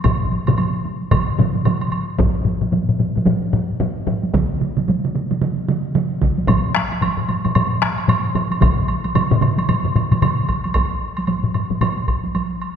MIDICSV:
0, 0, Header, 1, 3, 480
1, 0, Start_track
1, 0, Tempo, 534759
1, 38, Time_signature, 4, 2, 24, 8
1, 11453, End_track
2, 0, Start_track
2, 0, Title_t, "Taiko and cinematic ensemble drums"
2, 39, Note_on_c, 9, 47, 93
2, 39, Note_on_c, 9, 48, 70
2, 41, Note_on_c, 9, 41, 90
2, 49, Note_on_c, 9, 45, 96
2, 129, Note_off_c, 9, 47, 0
2, 129, Note_off_c, 9, 48, 0
2, 131, Note_off_c, 9, 41, 0
2, 139, Note_off_c, 9, 45, 0
2, 186, Note_on_c, 9, 48, 22
2, 276, Note_off_c, 9, 48, 0
2, 282, Note_on_c, 9, 48, 54
2, 372, Note_off_c, 9, 48, 0
2, 429, Note_on_c, 9, 48, 22
2, 430, Note_on_c, 9, 47, 94
2, 432, Note_on_c, 9, 45, 90
2, 519, Note_off_c, 9, 47, 0
2, 519, Note_off_c, 9, 48, 0
2, 522, Note_off_c, 9, 45, 0
2, 523, Note_on_c, 9, 48, 67
2, 613, Note_off_c, 9, 48, 0
2, 669, Note_on_c, 9, 48, 22
2, 759, Note_off_c, 9, 48, 0
2, 768, Note_on_c, 9, 48, 55
2, 858, Note_off_c, 9, 48, 0
2, 912, Note_on_c, 9, 48, 24
2, 1000, Note_on_c, 9, 47, 96
2, 1001, Note_off_c, 9, 48, 0
2, 1001, Note_on_c, 9, 45, 92
2, 1004, Note_on_c, 9, 41, 97
2, 1009, Note_on_c, 9, 48, 68
2, 1090, Note_off_c, 9, 47, 0
2, 1091, Note_off_c, 9, 45, 0
2, 1094, Note_off_c, 9, 41, 0
2, 1098, Note_off_c, 9, 48, 0
2, 1155, Note_on_c, 9, 48, 22
2, 1244, Note_on_c, 9, 45, 98
2, 1245, Note_off_c, 9, 48, 0
2, 1248, Note_on_c, 9, 47, 92
2, 1250, Note_on_c, 9, 48, 56
2, 1333, Note_off_c, 9, 45, 0
2, 1338, Note_off_c, 9, 47, 0
2, 1340, Note_off_c, 9, 48, 0
2, 1391, Note_on_c, 9, 48, 51
2, 1481, Note_off_c, 9, 48, 0
2, 1484, Note_on_c, 9, 45, 90
2, 1484, Note_on_c, 9, 48, 72
2, 1486, Note_on_c, 9, 47, 91
2, 1574, Note_off_c, 9, 45, 0
2, 1574, Note_off_c, 9, 48, 0
2, 1576, Note_off_c, 9, 47, 0
2, 1626, Note_on_c, 9, 48, 22
2, 1716, Note_off_c, 9, 48, 0
2, 1726, Note_on_c, 9, 48, 51
2, 1816, Note_off_c, 9, 48, 0
2, 1872, Note_on_c, 9, 48, 21
2, 1961, Note_on_c, 9, 45, 97
2, 1962, Note_off_c, 9, 48, 0
2, 1967, Note_on_c, 9, 48, 65
2, 1968, Note_on_c, 9, 41, 102
2, 2050, Note_off_c, 9, 45, 0
2, 2057, Note_off_c, 9, 48, 0
2, 2058, Note_off_c, 9, 41, 0
2, 2198, Note_on_c, 9, 45, 65
2, 2206, Note_on_c, 9, 48, 53
2, 2288, Note_off_c, 9, 45, 0
2, 2296, Note_off_c, 9, 48, 0
2, 2345, Note_on_c, 9, 45, 69
2, 2349, Note_on_c, 9, 48, 55
2, 2435, Note_off_c, 9, 45, 0
2, 2439, Note_off_c, 9, 48, 0
2, 2442, Note_on_c, 9, 48, 70
2, 2447, Note_on_c, 9, 45, 64
2, 2532, Note_off_c, 9, 48, 0
2, 2536, Note_off_c, 9, 45, 0
2, 2592, Note_on_c, 9, 45, 63
2, 2682, Note_off_c, 9, 45, 0
2, 2684, Note_on_c, 9, 45, 65
2, 2689, Note_on_c, 9, 48, 58
2, 2774, Note_off_c, 9, 45, 0
2, 2779, Note_off_c, 9, 48, 0
2, 2833, Note_on_c, 9, 45, 67
2, 2839, Note_on_c, 9, 48, 58
2, 2922, Note_off_c, 9, 45, 0
2, 2927, Note_off_c, 9, 48, 0
2, 2927, Note_on_c, 9, 48, 75
2, 2929, Note_on_c, 9, 45, 90
2, 3017, Note_off_c, 9, 48, 0
2, 3019, Note_off_c, 9, 45, 0
2, 3171, Note_on_c, 9, 45, 92
2, 3172, Note_on_c, 9, 48, 54
2, 3260, Note_off_c, 9, 45, 0
2, 3262, Note_off_c, 9, 48, 0
2, 3413, Note_on_c, 9, 45, 90
2, 3418, Note_on_c, 9, 48, 71
2, 3503, Note_off_c, 9, 45, 0
2, 3507, Note_off_c, 9, 48, 0
2, 3651, Note_on_c, 9, 45, 88
2, 3653, Note_on_c, 9, 48, 54
2, 3741, Note_off_c, 9, 45, 0
2, 3743, Note_off_c, 9, 48, 0
2, 3801, Note_on_c, 9, 48, 59
2, 3891, Note_off_c, 9, 48, 0
2, 3893, Note_on_c, 9, 41, 91
2, 3898, Note_on_c, 9, 48, 69
2, 3901, Note_on_c, 9, 47, 99
2, 3983, Note_off_c, 9, 41, 0
2, 3987, Note_off_c, 9, 48, 0
2, 3991, Note_off_c, 9, 47, 0
2, 4138, Note_on_c, 9, 48, 53
2, 4141, Note_on_c, 9, 47, 64
2, 4228, Note_off_c, 9, 48, 0
2, 4230, Note_off_c, 9, 47, 0
2, 4279, Note_on_c, 9, 47, 69
2, 4288, Note_on_c, 9, 48, 58
2, 4369, Note_off_c, 9, 47, 0
2, 4378, Note_off_c, 9, 48, 0
2, 4380, Note_on_c, 9, 47, 68
2, 4386, Note_on_c, 9, 48, 70
2, 4470, Note_off_c, 9, 47, 0
2, 4475, Note_off_c, 9, 48, 0
2, 4530, Note_on_c, 9, 47, 69
2, 4620, Note_off_c, 9, 47, 0
2, 4623, Note_on_c, 9, 48, 59
2, 4626, Note_on_c, 9, 47, 64
2, 4713, Note_off_c, 9, 48, 0
2, 4716, Note_off_c, 9, 47, 0
2, 4765, Note_on_c, 9, 47, 67
2, 4769, Note_on_c, 9, 48, 55
2, 4854, Note_off_c, 9, 47, 0
2, 4859, Note_off_c, 9, 48, 0
2, 4861, Note_on_c, 9, 47, 93
2, 4861, Note_on_c, 9, 48, 70
2, 4950, Note_off_c, 9, 47, 0
2, 4951, Note_off_c, 9, 48, 0
2, 5103, Note_on_c, 9, 47, 95
2, 5108, Note_on_c, 9, 48, 57
2, 5192, Note_off_c, 9, 47, 0
2, 5198, Note_off_c, 9, 48, 0
2, 5341, Note_on_c, 9, 47, 93
2, 5344, Note_on_c, 9, 48, 69
2, 5431, Note_off_c, 9, 47, 0
2, 5434, Note_off_c, 9, 48, 0
2, 5579, Note_on_c, 9, 47, 98
2, 5584, Note_on_c, 9, 48, 56
2, 5585, Note_on_c, 9, 41, 66
2, 5669, Note_off_c, 9, 47, 0
2, 5674, Note_off_c, 9, 41, 0
2, 5674, Note_off_c, 9, 48, 0
2, 5727, Note_on_c, 9, 48, 54
2, 5815, Note_on_c, 9, 41, 88
2, 5816, Note_off_c, 9, 48, 0
2, 5818, Note_on_c, 9, 45, 95
2, 5824, Note_on_c, 9, 48, 69
2, 5905, Note_off_c, 9, 41, 0
2, 5908, Note_off_c, 9, 45, 0
2, 5914, Note_off_c, 9, 48, 0
2, 6058, Note_on_c, 9, 37, 74
2, 6068, Note_on_c, 9, 48, 53
2, 6147, Note_off_c, 9, 37, 0
2, 6157, Note_off_c, 9, 48, 0
2, 6210, Note_on_c, 9, 48, 55
2, 6296, Note_on_c, 9, 45, 61
2, 6300, Note_off_c, 9, 48, 0
2, 6307, Note_on_c, 9, 48, 71
2, 6386, Note_off_c, 9, 45, 0
2, 6396, Note_off_c, 9, 48, 0
2, 6441, Note_on_c, 9, 45, 65
2, 6530, Note_off_c, 9, 45, 0
2, 6539, Note_on_c, 9, 48, 55
2, 6545, Note_on_c, 9, 45, 66
2, 6629, Note_off_c, 9, 48, 0
2, 6634, Note_off_c, 9, 45, 0
2, 6684, Note_on_c, 9, 48, 57
2, 6689, Note_on_c, 9, 45, 71
2, 6774, Note_off_c, 9, 48, 0
2, 6779, Note_off_c, 9, 45, 0
2, 6782, Note_on_c, 9, 48, 72
2, 6784, Note_on_c, 9, 45, 97
2, 6872, Note_off_c, 9, 48, 0
2, 6874, Note_off_c, 9, 45, 0
2, 7019, Note_on_c, 9, 37, 73
2, 7019, Note_on_c, 9, 48, 53
2, 7108, Note_off_c, 9, 48, 0
2, 7109, Note_off_c, 9, 37, 0
2, 7252, Note_on_c, 9, 45, 89
2, 7255, Note_on_c, 9, 48, 69
2, 7341, Note_off_c, 9, 45, 0
2, 7345, Note_off_c, 9, 48, 0
2, 7494, Note_on_c, 9, 45, 93
2, 7495, Note_on_c, 9, 48, 54
2, 7583, Note_off_c, 9, 45, 0
2, 7584, Note_off_c, 9, 48, 0
2, 7635, Note_on_c, 9, 48, 53
2, 7725, Note_off_c, 9, 48, 0
2, 7727, Note_on_c, 9, 48, 66
2, 7730, Note_on_c, 9, 47, 94
2, 7736, Note_on_c, 9, 45, 95
2, 7737, Note_on_c, 9, 41, 90
2, 7817, Note_off_c, 9, 48, 0
2, 7820, Note_off_c, 9, 47, 0
2, 7826, Note_off_c, 9, 45, 0
2, 7827, Note_off_c, 9, 41, 0
2, 7977, Note_on_c, 9, 48, 49
2, 8067, Note_off_c, 9, 48, 0
2, 8124, Note_on_c, 9, 48, 49
2, 8212, Note_on_c, 9, 45, 90
2, 8213, Note_off_c, 9, 48, 0
2, 8216, Note_on_c, 9, 47, 91
2, 8218, Note_on_c, 9, 48, 67
2, 8302, Note_off_c, 9, 45, 0
2, 8306, Note_off_c, 9, 47, 0
2, 8307, Note_off_c, 9, 48, 0
2, 8358, Note_on_c, 9, 47, 92
2, 8360, Note_on_c, 9, 45, 92
2, 8448, Note_off_c, 9, 47, 0
2, 8449, Note_on_c, 9, 47, 90
2, 8450, Note_off_c, 9, 45, 0
2, 8450, Note_on_c, 9, 45, 95
2, 8452, Note_on_c, 9, 48, 55
2, 8539, Note_off_c, 9, 47, 0
2, 8540, Note_off_c, 9, 45, 0
2, 8542, Note_off_c, 9, 48, 0
2, 8598, Note_on_c, 9, 48, 52
2, 8688, Note_off_c, 9, 48, 0
2, 8694, Note_on_c, 9, 47, 63
2, 8696, Note_on_c, 9, 48, 61
2, 8697, Note_on_c, 9, 45, 68
2, 8784, Note_off_c, 9, 47, 0
2, 8786, Note_off_c, 9, 48, 0
2, 8787, Note_off_c, 9, 45, 0
2, 8837, Note_on_c, 9, 45, 66
2, 8841, Note_on_c, 9, 47, 63
2, 8927, Note_off_c, 9, 45, 0
2, 8931, Note_off_c, 9, 47, 0
2, 8935, Note_on_c, 9, 45, 69
2, 8936, Note_on_c, 9, 47, 64
2, 8940, Note_on_c, 9, 48, 49
2, 9025, Note_off_c, 9, 45, 0
2, 9026, Note_off_c, 9, 47, 0
2, 9030, Note_off_c, 9, 48, 0
2, 9079, Note_on_c, 9, 45, 66
2, 9082, Note_on_c, 9, 47, 67
2, 9087, Note_on_c, 9, 48, 46
2, 9168, Note_off_c, 9, 45, 0
2, 9171, Note_off_c, 9, 47, 0
2, 9173, Note_on_c, 9, 45, 92
2, 9174, Note_on_c, 9, 47, 90
2, 9176, Note_off_c, 9, 48, 0
2, 9176, Note_on_c, 9, 48, 61
2, 9263, Note_off_c, 9, 45, 0
2, 9264, Note_off_c, 9, 47, 0
2, 9266, Note_off_c, 9, 48, 0
2, 9413, Note_on_c, 9, 41, 59
2, 9420, Note_on_c, 9, 48, 47
2, 9502, Note_off_c, 9, 41, 0
2, 9510, Note_off_c, 9, 48, 0
2, 9563, Note_on_c, 9, 48, 47
2, 9647, Note_on_c, 9, 41, 78
2, 9653, Note_off_c, 9, 48, 0
2, 9660, Note_on_c, 9, 48, 53
2, 9736, Note_off_c, 9, 41, 0
2, 9750, Note_off_c, 9, 48, 0
2, 10036, Note_on_c, 9, 48, 45
2, 10125, Note_on_c, 9, 45, 58
2, 10126, Note_off_c, 9, 48, 0
2, 10127, Note_on_c, 9, 48, 57
2, 10215, Note_off_c, 9, 45, 0
2, 10216, Note_off_c, 9, 48, 0
2, 10265, Note_on_c, 9, 45, 61
2, 10354, Note_off_c, 9, 45, 0
2, 10361, Note_on_c, 9, 45, 57
2, 10451, Note_off_c, 9, 45, 0
2, 10504, Note_on_c, 9, 45, 61
2, 10511, Note_on_c, 9, 48, 47
2, 10594, Note_off_c, 9, 45, 0
2, 10600, Note_off_c, 9, 48, 0
2, 10600, Note_on_c, 9, 45, 88
2, 10600, Note_on_c, 9, 48, 55
2, 10690, Note_off_c, 9, 45, 0
2, 10690, Note_off_c, 9, 48, 0
2, 10746, Note_on_c, 9, 48, 40
2, 10836, Note_off_c, 9, 48, 0
2, 10840, Note_on_c, 9, 41, 59
2, 10930, Note_off_c, 9, 41, 0
2, 10987, Note_on_c, 9, 48, 47
2, 11077, Note_off_c, 9, 48, 0
2, 11083, Note_on_c, 9, 48, 57
2, 11173, Note_off_c, 9, 48, 0
2, 11453, End_track
3, 0, Start_track
3, 0, Title_t, "Drums"
3, 36, Note_on_c, 9, 76, 48
3, 126, Note_off_c, 9, 76, 0
3, 423, Note_on_c, 9, 76, 39
3, 513, Note_off_c, 9, 76, 0
3, 518, Note_on_c, 9, 76, 40
3, 608, Note_off_c, 9, 76, 0
3, 1000, Note_on_c, 9, 76, 47
3, 1090, Note_off_c, 9, 76, 0
3, 1484, Note_on_c, 9, 76, 42
3, 1574, Note_off_c, 9, 76, 0
3, 1629, Note_on_c, 9, 76, 40
3, 1718, Note_off_c, 9, 76, 0
3, 1723, Note_on_c, 9, 76, 37
3, 1812, Note_off_c, 9, 76, 0
3, 5817, Note_on_c, 9, 76, 46
3, 5907, Note_off_c, 9, 76, 0
3, 6060, Note_on_c, 9, 76, 34
3, 6150, Note_off_c, 9, 76, 0
3, 6209, Note_on_c, 9, 76, 35
3, 6299, Note_off_c, 9, 76, 0
3, 6304, Note_on_c, 9, 76, 52
3, 6393, Note_off_c, 9, 76, 0
3, 6541, Note_on_c, 9, 76, 38
3, 6631, Note_off_c, 9, 76, 0
3, 6684, Note_on_c, 9, 76, 39
3, 6774, Note_off_c, 9, 76, 0
3, 6779, Note_on_c, 9, 76, 53
3, 6869, Note_off_c, 9, 76, 0
3, 7023, Note_on_c, 9, 76, 41
3, 7113, Note_off_c, 9, 76, 0
3, 7162, Note_on_c, 9, 76, 40
3, 7252, Note_off_c, 9, 76, 0
3, 7263, Note_on_c, 9, 76, 55
3, 7353, Note_off_c, 9, 76, 0
3, 7499, Note_on_c, 9, 76, 42
3, 7588, Note_off_c, 9, 76, 0
3, 7645, Note_on_c, 9, 76, 39
3, 7735, Note_off_c, 9, 76, 0
3, 7738, Note_on_c, 9, 76, 50
3, 7828, Note_off_c, 9, 76, 0
3, 7974, Note_on_c, 9, 76, 41
3, 8063, Note_off_c, 9, 76, 0
3, 8118, Note_on_c, 9, 76, 39
3, 8207, Note_off_c, 9, 76, 0
3, 8217, Note_on_c, 9, 76, 53
3, 8306, Note_off_c, 9, 76, 0
3, 8458, Note_on_c, 9, 76, 39
3, 8548, Note_off_c, 9, 76, 0
3, 8604, Note_on_c, 9, 76, 40
3, 8694, Note_off_c, 9, 76, 0
3, 8696, Note_on_c, 9, 76, 49
3, 8786, Note_off_c, 9, 76, 0
3, 8941, Note_on_c, 9, 76, 37
3, 9031, Note_off_c, 9, 76, 0
3, 9081, Note_on_c, 9, 76, 36
3, 9171, Note_off_c, 9, 76, 0
3, 9177, Note_on_c, 9, 76, 49
3, 9267, Note_off_c, 9, 76, 0
3, 9413, Note_on_c, 9, 76, 37
3, 9502, Note_off_c, 9, 76, 0
3, 9551, Note_on_c, 9, 76, 34
3, 9641, Note_off_c, 9, 76, 0
3, 9642, Note_on_c, 9, 76, 48
3, 9732, Note_off_c, 9, 76, 0
3, 10024, Note_on_c, 9, 76, 37
3, 10114, Note_off_c, 9, 76, 0
3, 10118, Note_on_c, 9, 76, 36
3, 10208, Note_off_c, 9, 76, 0
3, 10362, Note_on_c, 9, 76, 35
3, 10452, Note_off_c, 9, 76, 0
3, 10604, Note_on_c, 9, 76, 42
3, 10693, Note_off_c, 9, 76, 0
3, 10844, Note_on_c, 9, 76, 35
3, 10933, Note_off_c, 9, 76, 0
3, 11083, Note_on_c, 9, 76, 35
3, 11173, Note_off_c, 9, 76, 0
3, 11323, Note_on_c, 9, 76, 34
3, 11413, Note_off_c, 9, 76, 0
3, 11453, End_track
0, 0, End_of_file